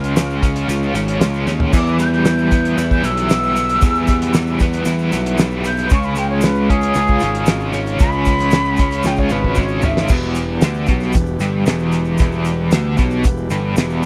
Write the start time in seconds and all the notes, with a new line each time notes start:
Already playing: C#2 C#3 G#3 C#4 F4 C#5 F5 F6
0.04 closed hi-hat, shaker
0.16 C#3, snare, closed hi-hat, shaker
0.30 shaker
0.42 C#4, kick, closed hi-hat, shaker
0.56 closed hi-hat, shaker
0.68 C#2 F4, closed hi-hat, shaker
0.82 shaker
0.94 G#1 C#4, closed hi-hat, shaker
1.08 closed hi-hat
1.20 C#2 G#3, snare, closed hi-hat, shaker
1.34 shaker
1.47 D#2 C#4, snare, shaker
1.60 floor tom
1.72 E2 E3 G3 B3 E4 B4 E5 D6, kick, crash, shaker
1.87 shaker
1.99 G3 G6, closed hi-hat, shaker
2.13 G6, snare
2.25 E3, snare, closed hi-hat, shaker
2.38 shaker
2.51 B3, kick, closed hi-hat, shaker
2.65 closed hi-hat
2.78 E2 E4, closed hi-hat, shaker
2.90 G6, kick, shaker
3.03 B1 B3 E6, closed hi-hat, shaker
3.17 closed hi-hat
3.30 G3, snare, closed hi-hat, shaker
3.43 shaker
3.56 B3, closed hi-hat, shaker
3.69 closed hi-hat, shaker
3.81 E2 E3, kick, closed hi-hat, shaker
3.95 shaker
4.07 G3, kick, closed hi-hat, shaker
4.22 snare, closed hi-hat
4.34 E3, snare, closed hi-hat, shaker
4.47 shaker
4.59 B3, kick, closed hi-hat, shaker
4.73 closed hi-hat, shaker
4.85 E2 E4, closed hi-hat, shaker
4.98 shaker
5.12 B1 B3, closed hi-hat, shaker
5.26 closed hi-hat
5.38 G3, snare, closed hi-hat, shaker
5.51 shaker
5.64 B3 G6, closed hi-hat, shaker
5.77 closed hi-hat, shaker
5.90 C#2 C#3 G#3 C#4 F4 C#5 F5 C#6, kick, closed hi-hat, shaker
6.03 B5, shaker
6.16 G#3 G5, closed hi-hat, shaker
6.30 C#5
6.41 C#3 B4, snare, closed hi-hat, shaker
6.55 shaker
6.69 C#4 G#4, kick, closed hi-hat
6.81 closed hi-hat, shaker
6.94 C#2 F4, closed hi-hat, shaker
7.07 kick, shaker
7.20 G#1 C#4, closed hi-hat, shaker
7.35 closed hi-hat
7.46 G#3, snare, closed hi-hat, shaker
7.60 shaker
7.73 C#4, closed hi-hat, shaker
7.86 closed hi-hat, shaker
7.99 C#2 C#3 D#5 B5, kick, closed hi-hat, shaker
8.12 shaker
8.25 G#3, kick, closed hi-hat, shaker
8.39 snare, closed hi-hat, shaker
8.51 C#3, snare, closed hi-hat, shaker
8.65 shaker
8.77 C#4, kick, closed hi-hat, shaker
8.91 closed hi-hat, shaker
9.03 C#2 F4 G5, snare, shaker
9.16 C#5, kick, shaker
9.29 G#1 C#4 B4, shaker
9.44 kick
9.55 G#3 C#5, kick, shaker
9.68 shaker
9.82 C#4 E5, floor tom, shaker
9.97 snare
10.08 E1 E2 E3 G3 B3 G4 B4, kick, crash, shaker
10.22 shaker
10.35 closed hi-hat, shaker
10.61 D2 D3, snare, closed hi-hat, shaker
10.74 shaker
10.87 B1 B2, kick, closed hi-hat, shaker
11.00 snare, shaker
11.13 E1 E2, kick, closed hi-hat, shaker
11.26 shaker
11.40 G1 G2, closed hi-hat, shaker
11.66 E1 E2, snare, closed hi-hat, shaker
11.79 shaker
11.92 closed hi-hat, shaker
12.05 shaker
12.18 E1 E2, kick, closed hi-hat, shaker
12.32 shaker
12.45 closed hi-hat, shaker
12.71 D2 D3, snare, closed hi-hat, shaker
12.97 B1 B2, kick, closed hi-hat, shaker
13.11 shaker
13.24 E1 E2, kick, closed hi-hat, shaker
13.37 shaker
13.50 G1 G2, closed hi-hat, shaker
13.76 E1 E2, snare, closed hi-hat, shaker
13.90 shaker